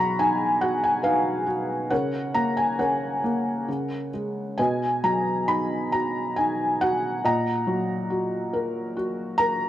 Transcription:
0.00 1.87 B2 medium
0.00 1.43 F#3 soft
0.00 0.58 F#5 medium
0.00 0.19 A#5 medium
0.00 1.93 B5 medium
0.00 1.93 C#6 medium
0.19 1.02 D#4 soft
0.19 0.63 G#5 medium
0.61 1.45 F#4 medium
0.61 0.81 F#5 medium
0.84 1.03 G#5 medium
1.03 1.88 D#4 medium
1.03 1.87 B4 medium
1.03 1.94 F5 medium
1.47 1.90 F#4 soft
1.90 2.77 C#3 medium
1.90 2.78 A#4 medium
1.90 2.78 C#5 medium
1.90 2.32 F#5 medium
2.34 3.22 A#3 soft
2.34 2.55 A#5 medium
2.57 2.79 G#5 medium
2.79 3.65 C#3 soft
2.79 4.09 A#4 soft
2.79 4.10 C#5 soft
2.79 4.09 F#5 medium
3.24 3.67 A#3 soft
3.68 4.56 C#3 medium
4.14 4.57 G#3 soft
4.58 7.20 B2 medium
4.58 5.89 B4 soft
4.58 5.89 D#5 medium
4.58 5.00 G#5 medium
5.04 6.76 F#3 soft
5.04 5.50 A#5 medium
5.48 6.37 D#4 soft
5.48 5.94 B5 medium
5.92 6.80 F#4 soft
5.92 6.34 A#5 medium
6.36 7.22 D#4 medium
6.36 6.77 G#5 medium
6.81 7.23 F#4 medium
6.81 7.24 F#5 medium
7.24 9.69 A#2 medium
7.24 9.35 D#5 medium
7.24 9.35 F#5 medium
7.24 9.35 A#5 medium
7.67 9.34 F#3 soft
8.10 8.95 F#4 soft
8.53 9.38 A#4 medium
8.97 9.69 F#4 medium
9.38 9.69 A#4 medium
9.38 9.69 A#5 loud

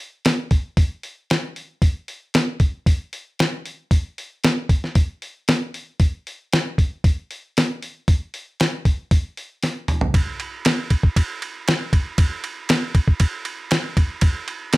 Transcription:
0.25 snare loud
0.25 open hi-hat medium
0.51 kick medium
0.51 open hi-hat soft
0.77 kick loud
0.77 open hi-hat medium
1.03 open hi-hat soft
1.30 snare medium
1.30 open hi-hat medium
1.56 open hi-hat soft
1.82 kick loud
1.82 open hi-hat medium
2.08 open hi-hat soft
2.34 snare loud
2.34 open hi-hat medium
2.60 kick medium
2.60 open hi-hat soft
2.86 kick loud
2.86 open hi-hat medium
3.13 open hi-hat soft
3.39 snare loud
3.39 open hi-hat medium
3.66 open hi-hat soft
3.91 kick loud
3.91 open hi-hat medium
4.18 open hi-hat soft
4.44 snare loud
4.44 open hi-hat medium
4.69 kick medium
4.69 open hi-hat medium
4.84 snare soft
4.95 kick loud
4.95 open hi-hat medium
5.22 open hi-hat soft
5.48 snare medium
5.48 open hi-hat medium
5.74 open hi-hat soft
6.00 kick loud
6.00 open hi-hat medium
6.27 open hi-hat soft
6.53 snare loud
6.53 open hi-hat medium
6.78 kick medium
6.78 open hi-hat soft
7.04 kick loud
7.04 open hi-hat medium
7.31 open hi-hat soft
7.57 snare medium
7.57 open hi-hat medium
7.82 open hi-hat soft
8.08 kick loud
8.08 open hi-hat medium
8.34 open hi-hat soft
8.60 snare loud
8.60 open hi-hat medium
8.85 kick medium
8.85 open hi-hat medium
9.11 kick loud
9.11 open hi-hat medium
9.37 open hi-hat soft
9.63 snare medium
9.63 open hi-hat medium
9.88 mid tom medium
9.88 open hi-hat soft
10.01 floor tom medium
10.14 kick loud
10.14 ride medium
10.40 ride medium
10.65 snare loud
10.65 ride medium
10.90 kick medium
10.90 ride medium
11.03 kick medium
11.16 kick medium
11.16 ride medium
11.42 ride medium
11.68 snare loud
11.68 ride medium
11.93 kick medium
11.93 ride medium
12.18 kick loud
12.18 ride medium
12.44 ride medium
12.69 snare loud
12.69 ride medium
12.95 kick medium
12.95 ride medium
13.08 kick medium
13.20 kick medium
13.20 ride medium
13.45 ride medium
13.71 snare loud
13.71 ride medium
13.97 kick medium
13.97 ride medium
14.21 kick loud
14.21 ride medium
14.48 ride medium
14.73 snare loud
14.73 ride medium

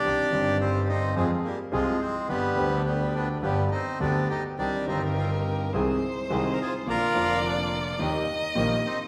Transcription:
0.00 0.58 D4 medium
0.00 0.57 G4 loud
0.04 0.28 C2 medium
0.04 0.28 C3 medium
0.04 0.28 D#3 soft
0.04 0.28 C4 soft
0.04 0.28 C4 medium
0.04 0.28 D4 soft
0.04 0.29 D4 medium
0.04 0.29 D#4 medium
0.04 0.28 G4 medium
0.31 1.12 G1 medium
0.31 1.12 G1 loud
0.31 1.12 G2 medium
0.31 1.11 D#3 medium
0.31 1.12 C4 medium
0.31 1.13 D4 medium
0.31 1.13 G4 medium
0.61 0.88 G3 medium
0.61 0.87 C4 medium
0.89 1.15 C4 medium
0.89 1.15 D#4 loud
1.16 1.40 F2 medium
1.16 1.40 F2 loud
1.16 1.40 F3 medium
1.16 1.40 G#3 medium
1.16 1.31 G#3 medium
1.16 1.29 C4 medium
1.16 1.40 C4 medium
1.16 1.40 F4 medium
1.16 1.40 G#4 medium
1.44 1.59 G3 medium
1.44 1.57 A#3 medium
1.71 1.96 C2 medium
1.71 1.96 C3 medium
1.71 1.96 F3 medium
1.71 1.96 G#3 medium
1.71 2.02 G#3 loud
1.71 1.96 C4 medium
1.71 1.96 F4 medium
1.71 1.96 G#4 loud
1.71 1.96 G#4 medium
1.75 2.00 F3 medium
2.01 2.29 G#3 medium
2.01 2.27 C4 medium
2.28 2.52 G1 medium
2.28 2.52 G2 medium
2.28 2.52 D3 soft
2.28 2.52 G3 soft
2.28 2.83 G3 medium
2.28 2.52 B3 medium
2.28 2.52 B3 soft
2.28 2.81 B3 loud
2.28 2.52 D4 medium
2.28 2.52 G4 medium
2.28 2.53 G4 medium
2.55 3.38 D2 loud
2.55 3.38 D2 medium
2.55 3.38 D3 medium
2.55 3.38 G3 medium
2.55 3.38 B3 loud
2.55 3.38 B3 medium
2.55 3.38 D4 medium
2.55 3.38 G4 loud
2.59 3.39 G4 medium
2.86 3.13 G3 medium
2.86 3.15 B3 medium
3.14 3.29 B3 medium
3.14 3.27 D4 medium
3.42 3.66 G1 loud
3.42 3.67 G1 loud
3.42 3.67 G2 medium
3.42 3.66 D3 medium
3.42 3.67 G3 medium
3.42 3.70 G3 medium
3.42 3.66 B3 medium
3.42 3.67 B3 medium
3.42 3.69 B3 medium
3.42 3.67 D4 medium
3.42 3.67 G4 medium
3.71 3.99 C4 medium
3.71 3.98 D#4 medium
4.00 4.24 D2 medium
4.00 4.25 D2 medium
4.00 4.25 D3 medium
4.00 4.25 G3 medium
4.00 4.25 B3 medium
4.00 4.29 B3 medium
4.00 4.25 D4 medium
4.00 4.28 D4 medium
4.00 4.25 G4 loud
4.00 4.25 G4 medium
4.29 4.44 D#4 medium
4.29 4.42 G4 medium
4.58 4.83 C2 medium
4.58 4.83 C2 soft
4.58 4.83 C3 medium
4.58 4.83 D#3 soft
4.58 4.83 G3 soft
4.58 4.87 G3 medium
4.58 4.83 C4 soft
4.58 4.83 C4 medium
4.58 4.86 D4 loud
4.58 4.83 D#4 medium
4.58 4.83 G4 medium
4.58 5.74 A#4 medium
4.85 5.69 G1 loud
4.85 5.69 G1 medium
4.85 5.69 G2 medium
4.85 5.68 D#3 medium
4.85 5.69 G3 medium
4.85 5.69 C4 medium
4.85 5.69 D#4 medium
4.85 5.01 D#4 medium
4.85 5.69 G4 loud
4.85 5.70 G4 medium
4.90 5.02 C4 medium
5.17 5.31 C4 medium
5.17 5.30 F4 medium
5.73 5.97 C2 loud
5.73 5.97 C2 medium
5.73 5.98 C3 loud
5.73 5.97 D#3 medium
5.73 5.98 G#3 medium
5.73 5.97 C4 medium
5.73 5.98 C4 medium
5.73 5.98 D#4 medium
5.73 5.98 G#4 medium
5.73 6.88 C5 loud
6.30 6.54 C2 medium
6.30 6.54 C2 loud
6.30 6.54 C3 medium
6.30 6.54 D#3 medium
6.30 6.54 G#3 medium
6.30 6.54 C4 medium
6.30 6.54 D#4 medium
6.30 6.54 G#4 medium
6.53 6.59 A#4 medium
6.61 6.73 F4 medium
6.61 6.74 G#4 medium
6.86 7.10 A#1 medium
6.86 7.11 A#1 medium
6.86 7.10 A#2 medium
6.86 7.10 D3 medium
6.86 7.10 F3 soft
6.86 7.10 A#3 soft
6.86 7.11 A#3 medium
6.86 7.11 D4 medium
6.86 7.11 F4 medium
6.86 7.41 F4 loud
6.86 7.46 A#4 loud
6.86 8.01 D5 loud
7.13 7.95 F1 medium
7.13 7.95 F2 medium
7.13 7.94 D3 medium
7.13 7.95 F3 medium
7.13 7.95 A#3 medium
7.13 7.96 A#3 medium
7.13 7.95 D4 medium
7.13 7.96 F4 loud
7.17 7.96 F4 medium
7.46 7.58 D4 medium
7.46 7.58 F4 medium
7.99 8.23 D#2 medium
7.99 8.23 D#2 loud
7.99 8.23 D#3 medium
7.99 8.23 G3 medium
7.99 8.23 A#3 medium
7.99 8.23 D#4 medium
7.99 8.23 G4 loud
7.99 8.23 G4 medium
7.99 9.08 D#5 loud
8.55 8.79 A#1 loud
8.55 8.79 A#2 loud
8.55 8.79 D#3 medium
8.55 8.79 G3 medium
8.55 8.79 A#3 medium
8.55 8.79 D#4 medium
8.55 8.79 G4 medium
8.55 8.79 G4 loud
8.86 8.98 C4 medium
8.86 8.98 D#4 loud

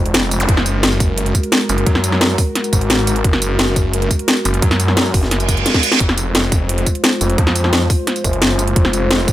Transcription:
0.00 0.13 F#1 medium
0.00 5.96 G#3 medium
0.00 0.45 F4 medium
0.00 0.45 C5 medium
0.06 closed hi-hat soft
0.14 0.47 F1 medium
0.14 snare loud
0.14 closed hi-hat medium
0.23 tambourine soft
0.31 closed hi-hat medium
0.31 tambourine medium
0.40 closed hi-hat soft
0.40 zap medium
0.49 0.82 F#1 loud
0.49 5.96 F#4 medium
0.49 5.96 A#4 medium
0.49 kick loud
0.49 closed hi-hat medium
0.57 snare medium
0.66 closed hi-hat medium
0.66 tambourine medium
0.83 1.33 F#1 loud
0.83 snare loud
0.83 closed hi-hat medium
0.92 tambourine soft
1.00 kick loud
1.00 closed hi-hat medium
1.00 tambourine medium
1.18 closed hi-hat medium
1.26 closed hi-hat soft
1.35 kick medium
1.35 closed hi-hat medium
1.35 tambourine medium
1.43 closed hi-hat soft
1.52 snare loud
1.52 closed hi-hat medium
1.61 tambourine soft
1.69 1.85 F#1 loud
1.69 closed hi-hat medium
1.69 tambourine medium
1.78 closed hi-hat soft
1.86 2.37 F#2 loud
1.86 kick loud
1.86 closed hi-hat medium
1.95 snare medium
2.04 closed hi-hat medium
2.04 tambourine medium
2.12 snare soft
2.21 snare loud
2.21 closed hi-hat medium
2.30 tambourine soft
2.38 kick loud
2.38 open hi-hat medium
2.38 tambourine medium
2.55 snare soft
2.55 closed hi-hat medium
2.64 closed hi-hat soft
2.64 tambourine soft
2.73 3.23 G#1 loud
2.73 kick medium
2.73 closed hi-hat medium
2.73 tambourine medium
2.81 closed hi-hat soft
2.90 snare loud
2.90 closed hi-hat medium
2.99 tambourine soft
3.07 closed hi-hat medium
3.07 tambourine medium
3.16 closed hi-hat soft
3.24 3.58 F#1 loud
3.24 kick loud
3.24 closed hi-hat medium
3.33 snare medium
3.42 closed hi-hat medium
3.42 tambourine medium
3.59 4.09 F#1 loud
3.59 snare loud
3.59 closed hi-hat medium
3.68 tambourine soft
3.76 kick loud
3.76 closed hi-hat medium
3.76 tambourine medium
3.93 closed hi-hat medium
4.02 closed hi-hat soft
4.11 kick medium
4.11 closed hi-hat medium
4.11 tambourine medium
4.19 closed hi-hat soft
4.28 snare loud
4.28 closed hi-hat loud
4.37 tambourine soft
4.45 4.61 F#1 loud
4.45 closed hi-hat medium
4.45 tambourine medium
4.54 closed hi-hat soft
4.62 5.13 F#2 loud
4.62 kick loud
4.62 closed hi-hat loud
4.71 snare medium
4.71 tambourine soft
4.80 closed hi-hat medium
4.80 tambourine medium
4.88 snare soft
4.97 snare loud
4.97 closed hi-hat loud
5.06 tambourine soft
5.14 5.64 F#1 loud
5.14 kick loud
5.14 open hi-hat medium
5.14 tambourine medium
5.23 snare soft
5.31 snare soft
5.31 closed hi-hat loud
5.31 reverse cymbal medium
5.40 closed hi-hat soft
5.40 tambourine soft
5.49 kick medium
5.49 closed hi-hat medium
5.49 tambourine medium
5.57 closed hi-hat soft
5.66 snare medium
5.66 closed hi-hat loud
5.74 kick medium
5.74 snare medium
5.74 tambourine soft
5.83 closed hi-hat medium
5.83 tambourine medium
5.92 snare medium
5.92 closed hi-hat soft
6.00 6.33 F1 loud
6.00 9.33 G#3 medium
6.00 9.33 F4 medium
6.00 9.33 C5 medium
6.00 kick loud
6.00 closed hi-hat medium
6.09 snare medium
6.18 closed hi-hat medium
6.18 tambourine medium
6.35 6.85 F1 loud
6.35 snare loud
6.35 closed hi-hat loud
6.43 tambourine soft
6.52 kick loud
6.52 closed hi-hat medium
6.52 tambourine medium
6.69 closed hi-hat medium
6.78 closed hi-hat soft
6.86 kick medium
6.86 closed hi-hat medium
6.86 tambourine medium
6.95 closed hi-hat soft
7.04 snare loud
7.04 closed hi-hat loud
7.12 tambourine soft
7.21 7.37 F1 loud
7.21 closed hi-hat medium
7.21 tambourine medium
7.30 closed hi-hat soft
7.38 7.89 F2 loud
7.38 kick loud
7.38 closed hi-hat medium
7.47 snare medium
7.56 closed hi-hat medium
7.56 tambourine medium
7.64 snare soft
7.73 snare loud
7.73 closed hi-hat loud
7.81 tambourine soft
7.90 kick loud
7.90 open hi-hat medium
7.90 tambourine medium
8.07 snare soft
8.07 closed hi-hat medium
8.16 closed hi-hat soft
8.16 tambourine soft
8.24 8.75 F#1 loud
8.24 kick medium
8.24 closed hi-hat medium
8.24 tambourine medium
8.33 closed hi-hat soft
8.42 snare loud
8.42 closed hi-hat loud
8.50 tambourine soft
8.59 closed hi-hat medium
8.59 tambourine medium
8.68 closed hi-hat soft
8.76 9.09 F1 loud
8.76 kick loud
8.76 closed hi-hat medium
8.85 snare medium
8.93 closed hi-hat medium
8.93 tambourine medium
9.11 9.33 F1 loud
9.11 snare loud
9.11 closed hi-hat medium
9.19 tambourine soft
9.28 kick loud
9.28 closed hi-hat medium
9.28 tambourine medium

